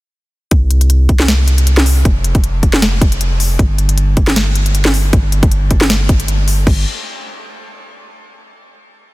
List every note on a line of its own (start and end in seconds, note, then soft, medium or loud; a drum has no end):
0.51 2.04 C2 medium
0.51 kick loud
0.51 closed hi-hat medium
0.71 closed hi-hat medium
0.81 closed hi-hat medium
0.90 closed hi-hat medium
1.09 kick loud
1.09 closed hi-hat medium
1.20 snare medium
1.28 snare loud
1.28 closed hi-hat medium
1.48 closed hi-hat medium
1.58 closed hi-hat medium
1.67 closed hi-hat medium
1.77 snare medium
1.86 open hi-hat medium
2.05 3.57 F1 medium
2.05 kick loud
2.05 closed hi-hat medium
2.24 closed hi-hat medium
2.35 kick loud
2.35 closed hi-hat medium
2.44 closed hi-hat medium
2.63 kick medium
2.63 closed hi-hat medium
2.73 snare medium
2.82 snare loud
2.82 closed hi-hat medium
3.01 kick loud
3.01 closed hi-hat medium
3.12 closed hi-hat medium
3.21 closed hi-hat medium
3.40 open hi-hat medium
3.59 5.11 G1 medium
3.59 kick loud
3.59 closed hi-hat medium
3.78 closed hi-hat medium
3.89 closed hi-hat medium
3.98 closed hi-hat medium
4.17 kick loud
4.17 closed hi-hat medium
4.27 snare medium
4.36 snare loud
4.36 closed hi-hat medium
4.55 closed hi-hat medium
4.66 closed hi-hat medium
4.75 closed hi-hat medium
4.85 snare medium
4.94 open hi-hat medium
5.13 6.65 G1 medium
5.13 kick loud
5.13 closed hi-hat medium
5.32 closed hi-hat medium
5.43 kick loud
5.43 closed hi-hat medium
5.52 closed hi-hat medium
5.71 kick medium
5.71 closed hi-hat medium
5.81 snare medium
5.90 snare loud
5.90 closed hi-hat medium
6.09 kick loud
6.09 closed hi-hat medium
6.20 closed hi-hat medium
6.28 closed hi-hat medium
6.48 open hi-hat medium
6.67 6.85 G1 loud
6.67 kick loud
6.67 crash medium